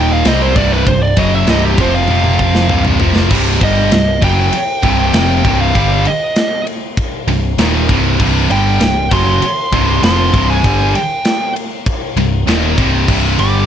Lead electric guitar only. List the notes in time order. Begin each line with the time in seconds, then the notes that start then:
Already playing: G5
0.13 F5
0.28 D#5
0.42 C5
0.57 D5
0.73 B4
0.87 C5
1.03 D5
1.18 D#5
1.35 E5
1.50 D#5
1.65 G4
1.81 C5
1.95 F5
3.63 D#5
4.24 G5
5.15 G5
5.61 F5
6.07 D#5
8.51 G5
9.13 C6
10.04 C6
10.50 G#5
10.96 G5
13.40 D6